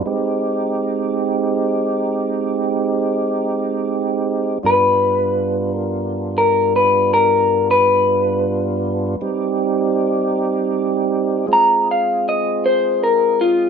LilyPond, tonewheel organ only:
\new Staff \with { instrumentName = "Tonewheel organ" } { \time 12/8 \key g \phrygian \tempo 4. = 53 <aes c' ees' g'>1. | <g, g b d' f'>1. | <g c' ees' g'>2. <aes c' f' aes'>2. | }